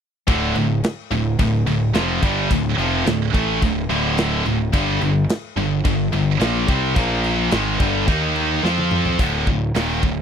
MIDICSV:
0, 0, Header, 1, 4, 480
1, 0, Start_track
1, 0, Tempo, 556586
1, 244, Time_signature, 4, 2, 24, 8
1, 8812, End_track
2, 0, Start_track
2, 0, Title_t, "Distorted electric guitar"
2, 0, Program_c, 0, 30
2, 236, Note_on_c, 0, 38, 88
2, 240, Note_on_c, 0, 45, 96
2, 245, Note_on_c, 0, 50, 100
2, 473, Note_off_c, 0, 38, 0
2, 474, Note_off_c, 0, 45, 0
2, 477, Note_off_c, 0, 50, 0
2, 483, Note_on_c, 0, 38, 59
2, 484, Note_on_c, 0, 45, 68
2, 675, Note_off_c, 0, 38, 0
2, 675, Note_off_c, 0, 45, 0
2, 957, Note_on_c, 0, 38, 58
2, 959, Note_on_c, 0, 45, 69
2, 1152, Note_off_c, 0, 38, 0
2, 1153, Note_off_c, 0, 45, 0
2, 1201, Note_on_c, 0, 38, 61
2, 1207, Note_on_c, 0, 45, 75
2, 1394, Note_off_c, 0, 38, 0
2, 1397, Note_off_c, 0, 45, 0
2, 1438, Note_on_c, 0, 38, 61
2, 1441, Note_on_c, 0, 45, 75
2, 1632, Note_off_c, 0, 38, 0
2, 1634, Note_off_c, 0, 45, 0
2, 1675, Note_on_c, 0, 41, 86
2, 1681, Note_on_c, 0, 48, 89
2, 1681, Note_on_c, 0, 53, 92
2, 1912, Note_off_c, 0, 41, 0
2, 1914, Note_off_c, 0, 53, 0
2, 1915, Note_off_c, 0, 48, 0
2, 1924, Note_on_c, 0, 43, 91
2, 1928, Note_on_c, 0, 50, 103
2, 1932, Note_on_c, 0, 55, 107
2, 2156, Note_off_c, 0, 43, 0
2, 2158, Note_off_c, 0, 50, 0
2, 2160, Note_off_c, 0, 55, 0
2, 2164, Note_on_c, 0, 38, 61
2, 2167, Note_on_c, 0, 45, 73
2, 2355, Note_off_c, 0, 38, 0
2, 2357, Note_off_c, 0, 45, 0
2, 2401, Note_on_c, 0, 41, 86
2, 2403, Note_on_c, 0, 48, 95
2, 2407, Note_on_c, 0, 53, 98
2, 2634, Note_off_c, 0, 41, 0
2, 2635, Note_off_c, 0, 48, 0
2, 2637, Note_off_c, 0, 53, 0
2, 2639, Note_on_c, 0, 38, 68
2, 2641, Note_on_c, 0, 45, 73
2, 2832, Note_off_c, 0, 38, 0
2, 2833, Note_off_c, 0, 45, 0
2, 2881, Note_on_c, 0, 45, 86
2, 2883, Note_on_c, 0, 52, 93
2, 2886, Note_on_c, 0, 57, 109
2, 3114, Note_off_c, 0, 45, 0
2, 3115, Note_off_c, 0, 52, 0
2, 3117, Note_off_c, 0, 57, 0
2, 3125, Note_on_c, 0, 38, 64
2, 3127, Note_on_c, 0, 45, 69
2, 3315, Note_off_c, 0, 38, 0
2, 3316, Note_off_c, 0, 45, 0
2, 3362, Note_on_c, 0, 38, 82
2, 3366, Note_on_c, 0, 45, 92
2, 3366, Note_on_c, 0, 50, 104
2, 3834, Note_off_c, 0, 38, 0
2, 3837, Note_off_c, 0, 45, 0
2, 3837, Note_off_c, 0, 50, 0
2, 3849, Note_on_c, 0, 38, 62
2, 3850, Note_on_c, 0, 45, 81
2, 4038, Note_off_c, 0, 38, 0
2, 4038, Note_off_c, 0, 45, 0
2, 4079, Note_on_c, 0, 43, 92
2, 4086, Note_on_c, 0, 50, 109
2, 4088, Note_on_c, 0, 55, 104
2, 4313, Note_off_c, 0, 43, 0
2, 4313, Note_off_c, 0, 50, 0
2, 4318, Note_off_c, 0, 55, 0
2, 4322, Note_on_c, 0, 43, 61
2, 4323, Note_on_c, 0, 50, 67
2, 4514, Note_off_c, 0, 43, 0
2, 4515, Note_off_c, 0, 50, 0
2, 4802, Note_on_c, 0, 43, 70
2, 4802, Note_on_c, 0, 50, 73
2, 4994, Note_off_c, 0, 43, 0
2, 4994, Note_off_c, 0, 50, 0
2, 5046, Note_on_c, 0, 43, 63
2, 5052, Note_on_c, 0, 50, 72
2, 5236, Note_off_c, 0, 43, 0
2, 5239, Note_off_c, 0, 50, 0
2, 5282, Note_on_c, 0, 43, 66
2, 5286, Note_on_c, 0, 50, 70
2, 5474, Note_off_c, 0, 43, 0
2, 5476, Note_off_c, 0, 50, 0
2, 5514, Note_on_c, 0, 46, 95
2, 5514, Note_on_c, 0, 53, 102
2, 5518, Note_on_c, 0, 58, 94
2, 5751, Note_off_c, 0, 46, 0
2, 5751, Note_off_c, 0, 53, 0
2, 5753, Note_off_c, 0, 58, 0
2, 5757, Note_on_c, 0, 48, 91
2, 5759, Note_on_c, 0, 55, 97
2, 5764, Note_on_c, 0, 60, 101
2, 5987, Note_off_c, 0, 48, 0
2, 5990, Note_on_c, 0, 46, 99
2, 5993, Note_off_c, 0, 55, 0
2, 5996, Note_off_c, 0, 60, 0
2, 5996, Note_on_c, 0, 53, 100
2, 6001, Note_on_c, 0, 58, 107
2, 6470, Note_off_c, 0, 46, 0
2, 6473, Note_off_c, 0, 53, 0
2, 6475, Note_off_c, 0, 58, 0
2, 6480, Note_on_c, 0, 44, 84
2, 6484, Note_on_c, 0, 51, 93
2, 6487, Note_on_c, 0, 56, 103
2, 6715, Note_off_c, 0, 44, 0
2, 6717, Note_off_c, 0, 51, 0
2, 6718, Note_off_c, 0, 56, 0
2, 6727, Note_on_c, 0, 43, 88
2, 6730, Note_on_c, 0, 50, 91
2, 6733, Note_on_c, 0, 55, 100
2, 6958, Note_off_c, 0, 43, 0
2, 6960, Note_off_c, 0, 50, 0
2, 6961, Note_off_c, 0, 55, 0
2, 6965, Note_on_c, 0, 58, 97
2, 6967, Note_on_c, 0, 51, 88
2, 6972, Note_on_c, 0, 63, 98
2, 7438, Note_off_c, 0, 58, 0
2, 7439, Note_off_c, 0, 51, 0
2, 7441, Note_off_c, 0, 63, 0
2, 7450, Note_on_c, 0, 53, 96
2, 7455, Note_on_c, 0, 60, 97
2, 7459, Note_on_c, 0, 65, 105
2, 7921, Note_off_c, 0, 53, 0
2, 7924, Note_off_c, 0, 60, 0
2, 7925, Note_off_c, 0, 65, 0
2, 7935, Note_on_c, 0, 38, 89
2, 7938, Note_on_c, 0, 45, 92
2, 7942, Note_on_c, 0, 50, 91
2, 8163, Note_off_c, 0, 38, 0
2, 8165, Note_off_c, 0, 45, 0
2, 8167, Note_off_c, 0, 50, 0
2, 8175, Note_on_c, 0, 38, 59
2, 8184, Note_on_c, 0, 45, 63
2, 8363, Note_off_c, 0, 38, 0
2, 8367, Note_off_c, 0, 45, 0
2, 8413, Note_on_c, 0, 39, 89
2, 8417, Note_on_c, 0, 46, 100
2, 8418, Note_on_c, 0, 51, 97
2, 8643, Note_off_c, 0, 39, 0
2, 8645, Note_off_c, 0, 46, 0
2, 8645, Note_off_c, 0, 51, 0
2, 8657, Note_on_c, 0, 38, 60
2, 8660, Note_on_c, 0, 45, 69
2, 8812, Note_off_c, 0, 38, 0
2, 8812, Note_off_c, 0, 45, 0
2, 8812, End_track
3, 0, Start_track
3, 0, Title_t, "Picked electric bass"
3, 0, Program_c, 1, 34
3, 241, Note_on_c, 1, 26, 92
3, 465, Note_off_c, 1, 26, 0
3, 482, Note_on_c, 1, 26, 74
3, 706, Note_off_c, 1, 26, 0
3, 961, Note_on_c, 1, 26, 82
3, 1185, Note_off_c, 1, 26, 0
3, 1200, Note_on_c, 1, 26, 78
3, 1425, Note_off_c, 1, 26, 0
3, 1449, Note_on_c, 1, 26, 79
3, 1669, Note_off_c, 1, 26, 0
3, 1677, Note_on_c, 1, 29, 100
3, 1903, Note_off_c, 1, 29, 0
3, 1919, Note_on_c, 1, 31, 92
3, 2144, Note_off_c, 1, 31, 0
3, 2161, Note_on_c, 1, 26, 88
3, 2385, Note_off_c, 1, 26, 0
3, 2395, Note_on_c, 1, 29, 91
3, 2622, Note_off_c, 1, 29, 0
3, 2643, Note_on_c, 1, 26, 86
3, 2865, Note_off_c, 1, 26, 0
3, 2882, Note_on_c, 1, 33, 103
3, 3105, Note_off_c, 1, 33, 0
3, 3123, Note_on_c, 1, 26, 82
3, 3346, Note_off_c, 1, 26, 0
3, 3363, Note_on_c, 1, 26, 91
3, 3809, Note_off_c, 1, 26, 0
3, 3848, Note_on_c, 1, 26, 88
3, 4068, Note_off_c, 1, 26, 0
3, 4083, Note_on_c, 1, 31, 100
3, 4305, Note_off_c, 1, 31, 0
3, 4321, Note_on_c, 1, 31, 85
3, 4545, Note_off_c, 1, 31, 0
3, 4799, Note_on_c, 1, 31, 84
3, 5024, Note_off_c, 1, 31, 0
3, 5046, Note_on_c, 1, 31, 83
3, 5267, Note_off_c, 1, 31, 0
3, 5285, Note_on_c, 1, 31, 85
3, 5507, Note_off_c, 1, 31, 0
3, 5523, Note_on_c, 1, 34, 96
3, 5746, Note_off_c, 1, 34, 0
3, 5765, Note_on_c, 1, 36, 98
3, 5987, Note_off_c, 1, 36, 0
3, 6004, Note_on_c, 1, 34, 95
3, 6450, Note_off_c, 1, 34, 0
3, 6486, Note_on_c, 1, 32, 93
3, 6708, Note_off_c, 1, 32, 0
3, 6727, Note_on_c, 1, 31, 99
3, 6949, Note_off_c, 1, 31, 0
3, 6966, Note_on_c, 1, 39, 94
3, 7412, Note_off_c, 1, 39, 0
3, 7449, Note_on_c, 1, 41, 91
3, 7894, Note_off_c, 1, 41, 0
3, 7924, Note_on_c, 1, 26, 90
3, 8148, Note_off_c, 1, 26, 0
3, 8169, Note_on_c, 1, 26, 77
3, 8391, Note_off_c, 1, 26, 0
3, 8409, Note_on_c, 1, 27, 91
3, 8631, Note_off_c, 1, 27, 0
3, 8648, Note_on_c, 1, 26, 78
3, 8812, Note_off_c, 1, 26, 0
3, 8812, End_track
4, 0, Start_track
4, 0, Title_t, "Drums"
4, 240, Note_on_c, 9, 49, 76
4, 241, Note_on_c, 9, 36, 97
4, 326, Note_off_c, 9, 49, 0
4, 327, Note_off_c, 9, 36, 0
4, 479, Note_on_c, 9, 49, 60
4, 565, Note_off_c, 9, 49, 0
4, 721, Note_on_c, 9, 49, 86
4, 730, Note_on_c, 9, 38, 117
4, 807, Note_off_c, 9, 49, 0
4, 816, Note_off_c, 9, 38, 0
4, 961, Note_on_c, 9, 49, 66
4, 1047, Note_off_c, 9, 49, 0
4, 1200, Note_on_c, 9, 49, 89
4, 1201, Note_on_c, 9, 36, 87
4, 1286, Note_off_c, 9, 49, 0
4, 1287, Note_off_c, 9, 36, 0
4, 1439, Note_on_c, 9, 49, 69
4, 1526, Note_off_c, 9, 49, 0
4, 1677, Note_on_c, 9, 49, 80
4, 1687, Note_on_c, 9, 38, 110
4, 1763, Note_off_c, 9, 49, 0
4, 1773, Note_off_c, 9, 38, 0
4, 1921, Note_on_c, 9, 36, 106
4, 1923, Note_on_c, 9, 49, 64
4, 2007, Note_off_c, 9, 36, 0
4, 2009, Note_off_c, 9, 49, 0
4, 2162, Note_on_c, 9, 36, 88
4, 2163, Note_on_c, 9, 49, 81
4, 2248, Note_off_c, 9, 36, 0
4, 2249, Note_off_c, 9, 49, 0
4, 2403, Note_on_c, 9, 49, 56
4, 2489, Note_off_c, 9, 49, 0
4, 2642, Note_on_c, 9, 49, 81
4, 2652, Note_on_c, 9, 38, 117
4, 2728, Note_off_c, 9, 49, 0
4, 2738, Note_off_c, 9, 38, 0
4, 2884, Note_on_c, 9, 36, 103
4, 2886, Note_on_c, 9, 49, 57
4, 2970, Note_off_c, 9, 36, 0
4, 2973, Note_off_c, 9, 49, 0
4, 3124, Note_on_c, 9, 36, 89
4, 3125, Note_on_c, 9, 49, 76
4, 3210, Note_off_c, 9, 36, 0
4, 3211, Note_off_c, 9, 49, 0
4, 3366, Note_on_c, 9, 49, 62
4, 3452, Note_off_c, 9, 49, 0
4, 3602, Note_on_c, 9, 49, 78
4, 3611, Note_on_c, 9, 38, 106
4, 3688, Note_off_c, 9, 49, 0
4, 3698, Note_off_c, 9, 38, 0
4, 3843, Note_on_c, 9, 49, 53
4, 3929, Note_off_c, 9, 49, 0
4, 4084, Note_on_c, 9, 36, 102
4, 4086, Note_on_c, 9, 49, 78
4, 4170, Note_off_c, 9, 36, 0
4, 4172, Note_off_c, 9, 49, 0
4, 4323, Note_on_c, 9, 49, 59
4, 4409, Note_off_c, 9, 49, 0
4, 4565, Note_on_c, 9, 49, 83
4, 4574, Note_on_c, 9, 38, 125
4, 4651, Note_off_c, 9, 49, 0
4, 4660, Note_off_c, 9, 38, 0
4, 4806, Note_on_c, 9, 49, 61
4, 4892, Note_off_c, 9, 49, 0
4, 5045, Note_on_c, 9, 36, 94
4, 5045, Note_on_c, 9, 49, 79
4, 5131, Note_off_c, 9, 36, 0
4, 5131, Note_off_c, 9, 49, 0
4, 5284, Note_on_c, 9, 49, 61
4, 5370, Note_off_c, 9, 49, 0
4, 5524, Note_on_c, 9, 49, 80
4, 5533, Note_on_c, 9, 38, 105
4, 5610, Note_off_c, 9, 49, 0
4, 5619, Note_off_c, 9, 38, 0
4, 5765, Note_on_c, 9, 36, 105
4, 5766, Note_on_c, 9, 49, 60
4, 5851, Note_off_c, 9, 36, 0
4, 5853, Note_off_c, 9, 49, 0
4, 6000, Note_on_c, 9, 49, 83
4, 6004, Note_on_c, 9, 36, 106
4, 6087, Note_off_c, 9, 49, 0
4, 6091, Note_off_c, 9, 36, 0
4, 6243, Note_on_c, 9, 49, 65
4, 6329, Note_off_c, 9, 49, 0
4, 6480, Note_on_c, 9, 49, 86
4, 6489, Note_on_c, 9, 38, 124
4, 6566, Note_off_c, 9, 49, 0
4, 6575, Note_off_c, 9, 38, 0
4, 6727, Note_on_c, 9, 36, 108
4, 6727, Note_on_c, 9, 49, 61
4, 6813, Note_off_c, 9, 36, 0
4, 6813, Note_off_c, 9, 49, 0
4, 6966, Note_on_c, 9, 49, 73
4, 6967, Note_on_c, 9, 36, 102
4, 7052, Note_off_c, 9, 49, 0
4, 7053, Note_off_c, 9, 36, 0
4, 7207, Note_on_c, 9, 49, 61
4, 7293, Note_off_c, 9, 49, 0
4, 7461, Note_on_c, 9, 38, 62
4, 7547, Note_off_c, 9, 38, 0
4, 7572, Note_on_c, 9, 48, 66
4, 7659, Note_off_c, 9, 48, 0
4, 7686, Note_on_c, 9, 45, 90
4, 7772, Note_off_c, 9, 45, 0
4, 7809, Note_on_c, 9, 43, 84
4, 7895, Note_off_c, 9, 43, 0
4, 7928, Note_on_c, 9, 36, 94
4, 7929, Note_on_c, 9, 46, 57
4, 8014, Note_off_c, 9, 36, 0
4, 8015, Note_off_c, 9, 46, 0
4, 8168, Note_on_c, 9, 36, 87
4, 8254, Note_off_c, 9, 36, 0
4, 8410, Note_on_c, 9, 46, 62
4, 8420, Note_on_c, 9, 38, 116
4, 8496, Note_off_c, 9, 46, 0
4, 8506, Note_off_c, 9, 38, 0
4, 8650, Note_on_c, 9, 36, 94
4, 8736, Note_off_c, 9, 36, 0
4, 8812, End_track
0, 0, End_of_file